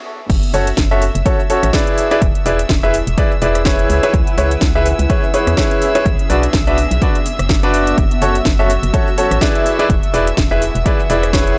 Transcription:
0.30 F#1 E5 E6, kick, closed hi-hat, crash, shaker
0.43 closed hi-hat
0.54 F#1 C#4 F#4 A4 C#5, open hi-hat, shaker
0.67 closed hi-hat, shaker
0.77 F#1, kick, snare, closed hi-hat, shaker
0.91 C#4 F#4 A4 E5 C#6, shaker
1.02 open hi-hat, shaker
1.15 F#1, closed hi-hat, shaker
1.26 C#4 F#4 A4 C#5, kick, closed hi-hat, shaker
1.40 shaker
1.50 C#4 F#4 A4 C#5, open hi-hat, shaker
1.63 A1, cross-stick, closed hi-hat, shaker
1.73 E4 G#4 B4 D5, kick, snare, closed hi-hat, shaker
1.87 closed hi-hat
1.98 E4, open hi-hat, shaker
2.11 E4 G#4 B4 D5, closed hi-hat, shaker
2.22 E1, kick, closed hi-hat, shaker
2.35 closed hi-hat
2.46 E1 E4 G#4 B4 D5, open hi-hat, shaker
2.52 B4
2.59 F#5, closed hi-hat, shaker
2.69 E1, kick, snare, closed hi-hat, shaker
2.83 E4 G#4 B4 E5 G#5, shaker
2.94 open hi-hat, shaker
3.07 E1, closed hi-hat, shaker
3.18 E4 G#4 B4 D5, kick, closed hi-hat, shaker
3.31 shaker
3.42 E1 E4 G#4 B4 D5, open hi-hat, shaker
3.55 cross-stick, closed hi-hat, shaker
3.65 E4 G#4 B4 C#5, kick, snare, closed hi-hat, shaker
3.79 closed hi-hat
3.90 C#2 C#4, open hi-hat, shaker
4.01 E4 G#4 B4 C#5, closed hi-hat, shaker
4.14 C#2, kick, closed hi-hat, shaker
4.27 closed hi-hat
4.38 C#2 E4 G#4 B4 C#5 E5, open hi-hat, shaker
4.51 closed hi-hat, shaker
4.61 C#2, kick, snare, closed hi-hat, shaker
4.75 E4 G#4 B4 E5, shaker
4.86 open hi-hat, shaker
4.99 C#2, closed hi-hat, shaker
5.10 E4 G#4 B4 C#5, kick, closed hi-hat, shaker
5.23 shaker
5.34 E4 G#4 B4 C#5, open hi-hat, shaker
5.47 E2, cross-stick, closed hi-hat, shaker
5.57 E4 G#4 B4 C#5, kick, snare, closed hi-hat, shaker
5.71 closed hi-hat
5.82 open hi-hat, shaker
5.95 E4 G#4 B4 C#5, closed hi-hat, shaker
6.06 B1 B3, kick, closed hi-hat, shaker
6.19 closed hi-hat
6.27 B1 D4 F#4 B4 D5, open hi-hat, shaker
6.43 closed hi-hat, shaker
6.53 B1, kick, snare, closed hi-hat, shaker
6.67 D4 F#4 B4 E5, closed hi-hat, shaker
6.78 open hi-hat, shaker
6.91 B1, closed hi-hat, shaker
7.02 D4 F#4 B4 D5, kick, closed hi-hat, shaker
7.15 closed hi-hat, shaker
7.26 open hi-hat, shaker
7.39 F#1, cross-stick, closed hi-hat, shaker
7.49 kick, snare, closed hi-hat, shaker
7.63 D4 F#4 B4 D5, closed hi-hat
7.74 open hi-hat, shaker
7.87 closed hi-hat, shaker
7.98 F#1, kick, closed hi-hat, shaker
8.11 closed hi-hat
8.22 F#1 C#4 F#4 A4 C#5, open hi-hat, shaker
8.35 closed hi-hat, shaker
8.45 F#1, kick, snare, closed hi-hat, shaker
8.59 C#4 F#4 A4 E5, shaker
8.65 C#6
8.70 open hi-hat, shaker
8.83 F#1, closed hi-hat, shaker
8.94 C#4 F#4 A4 C#5, kick, closed hi-hat, shaker
9.08 shaker
9.18 C#4 F#4 A4 C#5, open hi-hat, shaker
9.31 A1, cross-stick, closed hi-hat, shaker
9.41 E4 G#4 B4 D5, kick, snare, closed hi-hat, shaker
9.55 closed hi-hat
9.66 E4, open hi-hat, shaker
9.79 E4 G#4 B4 D5, closed hi-hat, shaker
9.86 E1 F#5, kick, closed hi-hat, shaker
9.91 G#5
10.03 closed hi-hat
10.08 B4
10.14 E1 E4 G#4 B4 D5, open hi-hat, shaker
10.27 closed hi-hat, shaker
10.37 E1, kick, snare, closed hi-hat, shaker
10.51 E4 G#4 B4 E5, shaker
10.62 open hi-hat, shaker
10.75 E1, closed hi-hat, shaker
10.86 E4 G#4 B4 D5, kick, closed hi-hat, shaker
11.00 shaker
11.10 E1 E4 G#4 B4 D5, open hi-hat, shaker
11.23 cross-stick, closed hi-hat, shaker
11.33 E4 G#4 B4 C#5, kick, snare, closed hi-hat, shaker
11.47 closed hi-hat

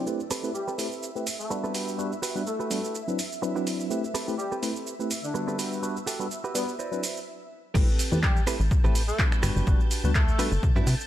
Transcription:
0.06 A3 C4 E4 G4 B4 E5 E6, shaker
0.20 shaker
0.31 C4 G4 A4 B4, open hi-hat, shaker
0.43 A3 C4 E4 G4 B4, shaker
0.55 G3 G4, shaker
0.68 C4 G4 A4 B4, shaker
0.78 A3 C4 E4 G4 B4, open hi-hat, shaker
0.92 shaker
1.03 shaker
1.15 A3 C4 E4 G4 B4, shaker
1.27 open hi-hat, shaker
1.40 A3 A4, shaker
1.50 G3 B3 D4 F#4 B4, muted clean electric guitar stroke, shaker
1.64 C4 G4 A4 B4, shaker
1.74 F#4 G4 B4, open hi-hat, shaker
1.88 shaker
1.98 G3 B3 D4 F#4 B4, shaker
2.12 shaker
2.22 F#4 G4 B4, open hi-hat, shaker
2.35 G3 B3 D4 F#4 B4, shaker
2.47 A3 A4, shaker
2.59 F#4 G4 B4, shaker
2.70 G3 B3 D4 F#4 B4, open hi-hat, shaker
2.84 shaker
2.95 shaker
3.07 F#3 C4 D4 E4 B4, shaker
3.19 open hi-hat, shaker
3.32 shaker
3.42 F#3 C4 D4 E4 B4, muted clean electric guitar stroke, shaker
3.56 C4 D4 E4 F#4 B4, shaker
3.67 open hi-hat, shaker
3.80 muted clean electric guitar stroke, shaker
3.90 A3 C4 E4 G4 B4, shaker
4.04 shaker
4.14 C4 G4 A4 B4, open hi-hat, shaker
4.28 A3 C4 E4 G4 B4, shaker
4.39 G3 G4, shaker
4.52 C4 G4 A4 B4, shaker
4.62 A3 C4 E4 G4 B4, open hi-hat, shaker
4.76 shaker
4.87 shaker
4.99 A3 C4 E4 G4 B4, shaker
5.11 open hi-hat, shaker
5.24 D3 D4, shaker
5.34 G3 B3 D4 F#4 B4, muted clean electric guitar stroke, shaker
5.47 C4 G4 A4 B4, shaker
5.58 F#4 G4 B4, open hi-hat, shaker
5.73 shaker
5.82 G3 B3 D4 F#4 B4, shaker
5.97 shaker
6.06 F#4 G4 A4, open hi-hat, shaker
6.19 G3 B3 D4 F#4 B4, shaker
6.31 shaker
6.44 F#4 G4 B4, shaker
6.54 G3 B3 D4 F#4 B4, open hi-hat, shaker
6.69 shaker
6.79 E4 F#4 B4 C5 D5, shaker
6.91 F#3 C4 D4 E4 B4, shaker
7.03 open hi-hat, shaker
7.17 shaker
7.74 A1 A3 C4 E4 G4 A4 B4 A5 G6, kick, crash, shaker
7.89 shaker
7.99 open hi-hat, shaker
8.11 E2 A3 C4 E4 G4 B4, shaker
8.23 G3 G4, kick, clap, shaker
8.36 shaker
8.47 A3 C4 E4 G4 A4 B4, finger snap, open hi-hat, shaker
8.60 A1, shaker
8.71 A1, muted clean electric guitar stroke, kick, shaker
8.84 A1 A3 C4 E4 G4 A4 B4, shaker
8.95 open hi-hat, shaker
9.08 A3 A4, shaker
9.19 G3 B3 D4 F#4 B4, muted clean electric guitar stroke, kick, clap, shaker
9.32 finger snap, muted clean electric guitar stroke, shaker
9.43 G1 D4 F#4 G4 B4, finger snap, open hi-hat, shaker
9.56 G1, shaker
9.67 G1 G3 B3 D4 F#4 B4, kick, shaker
9.80 shaker
9.91 open hi-hat, shaker
10.04 D2 G3 B3 D4 F#4 B4, shaker
10.15 A3 A4, kick, clap, shaker
10.28 shaker
10.39 G3 B3 D4 F#4 G4 B4, open hi-hat, shaker
10.52 G1, shaker
10.63 C3, muted clean electric guitar stroke, kick, shaker
10.75 G2 F#3 C4 D4 E4 F#4 B4, shaker
10.87 C3, open hi-hat, shaker
11.01 shaker

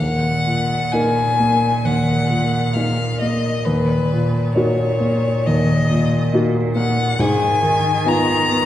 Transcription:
0.00 D#2 A#2 F#5
0.46 A#2
0.92 A#3 D#4 A#4 G#5
1.40 A#3
1.85 D#2 F#5
2.30 A#2
2.74 A#3 D#4 A#4 F5
3.21 A#3 D#5
3.65 D#2 A#2 B4
4.12 A#2
4.55 A#3 D#4 F#4 C#5
5.01 A#3
5.46 D#2 D#5
5.90 A#2
6.33 A#3 D#4 F#4
6.75 A#3 F#5
7.19 G#2 D#3 G#5
7.63 D#3
8.05 B3 D#4 F4 A#5
8.51 B3

